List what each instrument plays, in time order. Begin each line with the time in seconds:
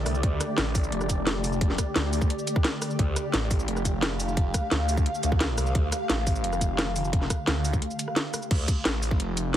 Already playing: synth drone D3 A3 G4 D5
0.06 detuned saw bass C2, cross-stick, open hi-hat, cabasa
0.15 cabasa
0.23 detuned saw bass D2, kick, closed hi-hat
0.41 cross-stick, closed hi-hat, cabasa
0.58 detuned saw bass A1, snare, closed hi-hat
0.75 kick, open hi-hat, cabasa
0.84 cabasa
0.92 detuned saw bass F1, closed hi-hat
1.01 cross-stick, cabasa
1.09 kick, closed hi-hat, cabasa
1.27 snare, closed hi-hat
1.44 open hi-hat, cabasa
1.53 cabasa
1.61 kick, closed hi-hat
1.70 snare
1.78 kick, cross-stick, closed hi-hat, cabasa
1.96 detuned saw bass D2, snare, closed hi-hat
2.13 open hi-hat, cabasa
2.22 kick, cabasa
2.30 closed hi-hat
2.39 cabasa
2.47 closed hi-hat, cabasa
2.56 kick, cross-stick
2.65 snare, closed hi-hat
2.82 cross-stick, open hi-hat, cabasa
2.90 cabasa
2.99 detuned saw bass D2, synth drone F5, kick, closed hi-hat
3.16 cross-stick, closed hi-hat, cabasa
3.34 detuned saw bass A1, snare, closed hi-hat
3.51 kick, open hi-hat, cabasa
3.59 cabasa
3.68 detuned saw bass F1, closed hi-hat
3.77 cross-stick, cabasa
3.85 kick, closed hi-hat, cabasa
4.03 snare, closed hi-hat
4.20 open hi-hat, cabasa
4.28 cabasa
4.37 kick, closed hi-hat
4.54 kick, cross-stick, closed hi-hat, cabasa
4.71 detuned saw bass D2, snare, closed hi-hat
4.89 open hi-hat, cabasa
4.97 kick, cabasa
5.06 closed hi-hat
5.15 cabasa
5.23 detuned saw bass D2, closed hi-hat, cabasa
5.32 kick, cross-stick
5.41 snare, closed hi-hat
5.58 detuned saw bass C2, cross-stick, open hi-hat, cabasa
5.66 cabasa
5.75 detuned saw bass D2, kick, closed hi-hat
5.92 cross-stick, closed hi-hat, cabasa
6.09 detuned saw bass A1, snare, closed hi-hat
6.27 kick, open hi-hat, cabasa
6.35 cabasa
6.44 detuned saw bass F1, closed hi-hat
6.53 cross-stick, cabasa
6.61 kick, closed hi-hat, cabasa
6.79 snare, closed hi-hat
6.96 open hi-hat, cabasa
7.04 cabasa
7.13 kick, closed hi-hat
7.22 snare
7.30 kick, cross-stick, closed hi-hat, cabasa
7.47 detuned saw bass D2, snare, closed hi-hat
7.65 open hi-hat, cabasa
7.73 kick, cabasa
7.82 closed hi-hat
7.91 cabasa
7.99 closed hi-hat, cabasa
8.08 cross-stick
8.16 snare, closed hi-hat
8.34 cross-stick, open hi-hat, cabasa
8.42 cabasa
8.51 detuned saw bass D2, kick, closed hi-hat, crash
8.68 kick, closed hi-hat, cabasa
8.85 detuned saw bass A1, snare, closed hi-hat
9.03 open hi-hat, cabasa
9.11 kick
9.20 detuned saw bass F1, closed hi-hat
9.37 closed hi-hat, cabasa